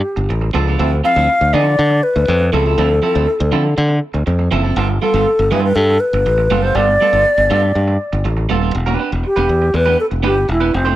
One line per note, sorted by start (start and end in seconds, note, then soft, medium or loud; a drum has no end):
0.00 0.29 G4 medium
0.16 0.27 G1 medium
0.16 muted clean electric guitar stroke soft
0.29 0.51 A1 medium
0.29 muted clean electric guitar stroke soft
0.41 muted clean electric guitar stroke soft
0.53 0.75 C#2 medium
0.53 0.68 F3 medium
0.53 0.67 B3 medium
0.53 0.67 D4 medium
0.53 0.66 A4 loud
0.67 0.77 F3 soft
0.67 0.78 B3 medium
0.67 0.78 D4 medium
0.67 0.78 A4 medium
0.78 1.00 D2 loud
0.78 0.93 F3 medium
0.78 0.92 C4 medium
0.78 0.91 E4 loud
0.78 0.91 A4 loud
0.92 muted clean electric guitar stroke soft
1.04 1.15 F3 medium
1.04 1.15 C4 medium
1.04 1.15 E4 medium
1.04 1.15 A4 medium
1.04 1.55 F5 loud
1.16 1.27 D2 medium
1.16 1.28 F3 medium
1.16 1.28 C4 medium
1.16 1.28 E4 medium
1.16 1.27 A4 medium
1.29 muted clean electric guitar stroke soft
1.41 1.51 D2 medium
1.41 muted clean electric guitar stroke soft
1.53 1.75 D3 medium
1.53 1.73 F3 medium
1.53 1.66 C4 medium
1.53 1.66 E4 medium
1.53 1.65 A4 medium
1.53 2.05 D5 loud
1.66 muted clean electric guitar stroke soft
1.78 2.00 D3 loud
1.78 muted clean electric guitar stroke soft
1.90 muted clean electric guitar stroke soft
2.03 2.54 B4 loud
2.16 2.26 D2 medium
2.16 muted clean electric guitar stroke soft
2.28 2.49 F2 loud
2.28 muted clean electric guitar stroke soft
2.40 muted clean electric guitar stroke soft
2.52 2.74 C#2 medium
2.52 2.65 F3 medium
2.52 2.65 C4 medium
2.52 2.65 E4 medium
2.52 4.02 A4 medium
2.52 2.64 A4 loud
2.65 2.77 F3 soft
2.65 2.77 C4 medium
2.65 2.77 E4 medium
2.65 2.77 A4 medium
2.78 2.99 D2 loud
2.78 2.92 F3 loud
2.78 2.90 C4 loud
2.78 2.89 E4 loud
2.78 2.89 A4 loud
2.90 muted clean electric guitar stroke soft
3.02 3.14 F3 medium
3.02 3.14 C4 medium
3.02 3.14 E4 medium
3.02 3.13 A4 medium
3.14 3.26 D2 medium
3.14 3.26 F3 medium
3.14 3.26 C4 medium
3.14 3.26 E4 medium
3.14 3.26 A4 medium
3.27 muted clean electric guitar stroke soft
3.40 3.51 D2 loud
3.40 muted clean electric guitar stroke soft
3.52 3.73 D3 medium
3.52 3.66 F3 medium
3.52 3.64 C4 medium
3.52 3.64 E4 loud
3.52 3.63 A4 medium
3.64 muted clean electric guitar stroke medium
3.77 3.98 D3 loud
3.77 muted clean electric guitar stroke medium
3.88 muted clean electric guitar stroke soft
4.14 4.25 D2 medium
4.14 muted clean electric guitar stroke medium
4.26 4.48 F2 medium
4.26 muted clean electric guitar stroke soft
4.39 muted clean electric guitar stroke soft
4.51 4.73 F#1 medium
4.51 4.64 F3 medium
4.51 4.63 C4 medium
4.51 4.63 E4 loud
4.51 4.62 A4 loud
4.63 4.76 F3 soft
4.63 4.76 C4 medium
4.63 4.75 E4 medium
4.63 4.75 A4 medium
4.76 4.97 G1 loud
4.76 4.91 G3 medium
4.76 4.89 B3 loud
4.76 4.88 F4 loud
4.76 4.88 A4 medium
4.89 muted clean electric guitar stroke soft
5.02 5.13 G3 medium
5.02 5.13 B3 medium
5.02 5.13 F4 medium
5.02 5.53 A4 medium
5.02 5.13 A4 medium
5.14 5.24 G1 loud
5.14 5.26 G3 medium
5.14 5.26 B3 medium
5.14 5.26 F4 medium
5.14 5.25 A4 medium
5.27 muted clean electric guitar stroke soft
5.39 5.49 G1 loud
5.39 muted clean electric guitar stroke soft
5.51 5.72 G2 loud
5.51 5.71 G3 medium
5.51 5.64 B3 loud
5.51 5.63 F4 loud
5.51 5.63 A4 loud
5.51 5.63 B4 medium
5.64 5.77 B4 medium
5.64 muted clean electric guitar stroke soft
5.75 5.97 G2 loud
5.75 6.02 A4 loud
5.75 muted clean electric guitar stroke soft
5.90 muted clean electric guitar stroke soft
6.00 6.64 B4 medium
6.13 6.24 G1 loud
6.13 muted clean electric guitar stroke soft
6.26 6.47 A1 loud
6.26 muted clean electric guitar stroke soft
6.38 muted clean electric guitar stroke soft
6.50 6.71 F#1 loud
6.50 6.63 G3 medium
6.50 6.62 B3 medium
6.50 6.62 F4 medium
6.50 6.61 A4 loud
6.62 6.74 G3 medium
6.62 6.74 B3 medium
6.62 6.74 F4 medium
6.62 6.74 A4 medium
6.62 6.77 C5 loud
6.75 6.96 G1 loud
6.75 6.90 G3 medium
6.75 6.88 B3 medium
6.75 6.87 F4 medium
6.75 6.87 A4 loud
6.75 8.24 D5 loud
6.88 muted clean electric guitar stroke medium
7.01 7.12 G3 medium
7.01 7.12 B3 medium
7.01 7.12 F4 medium
7.01 7.11 A4 medium
7.13 7.23 G1 medium
7.13 7.24 G3 soft
7.13 7.24 B3 medium
7.13 7.24 F4 medium
7.13 7.24 A4 medium
7.26 muted clean electric guitar stroke soft
7.38 7.48 G1 medium
7.38 muted clean electric guitar stroke soft
7.50 7.71 G2 loud
7.50 7.64 G3 medium
7.50 7.62 B3 medium
7.50 7.62 F4 medium
7.50 7.61 A4 loud
7.63 muted clean electric guitar stroke soft
7.75 7.96 G2 medium
7.75 muted clean electric guitar stroke soft
7.88 muted clean electric guitar stroke soft
8.13 8.23 G1 medium
8.13 muted clean electric guitar stroke soft
8.24 8.46 A1 medium
8.24 muted clean electric guitar stroke medium
8.37 muted clean electric guitar stroke soft
8.49 8.71 D#1 medium
8.49 8.62 G3 medium
8.49 8.61 B3 medium
8.49 8.61 F4 medium
8.49 8.60 A4 medium
8.61 8.74 G3 soft
8.61 8.73 B3 medium
8.61 8.73 F4 medium
8.61 8.73 A4 medium
8.74 8.95 E1 loud
8.74 muted clean electric guitar stroke soft
8.86 8.98 B3 medium
8.86 8.98 D4 medium
8.86 8.99 G4 medium
8.86 8.99 B4 medium
8.99 9.10 B3 medium
8.99 9.11 D4 medium
8.99 9.11 G4 medium
8.99 9.11 B4 medium
9.12 9.22 E1 medium
9.12 muted clean electric guitar stroke soft
9.24 9.77 G4 loud
9.24 muted clean electric guitar stroke soft
9.36 9.47 E1 medium
9.36 9.48 B3 medium
9.36 9.48 D4 medium
9.36 9.49 G4 medium
9.36 9.49 B4 medium
9.49 9.70 E2 medium
9.49 muted clean electric guitar stroke medium
9.62 muted clean electric guitar stroke soft
9.74 9.95 E2 medium
9.74 9.99 B4 loud
9.74 muted clean electric guitar stroke soft
9.86 9.97 B3 medium
9.86 9.98 D4 medium
9.86 9.98 G4 medium
9.86 9.98 B4 medium
9.98 10.06 A4 medium
9.98 muted clean electric guitar stroke soft
10.11 10.24 E1 medium
10.11 muted clean electric guitar stroke medium
10.23 10.45 G1 medium
10.23 10.38 B3 medium
10.23 10.36 D4 loud
10.23 10.35 G4 medium
10.23 10.47 G4 loud
10.23 10.35 B4 loud
10.36 muted clean electric guitar stroke soft
10.48 10.69 E1 medium
10.48 10.77 E4 medium
10.48 muted clean electric guitar stroke soft
10.60 10.72 B3 medium
10.60 10.72 D4 medium
10.60 10.72 G4 medium
10.60 10.72 B4 medium
10.73 10.95 F1 loud
10.73 10.96 C4 medium
10.73 muted clean electric guitar stroke soft
10.85 10.96 A3 medium
10.85 10.96 D4 medium
10.85 10.96 G4 medium
10.85 10.96 C5 medium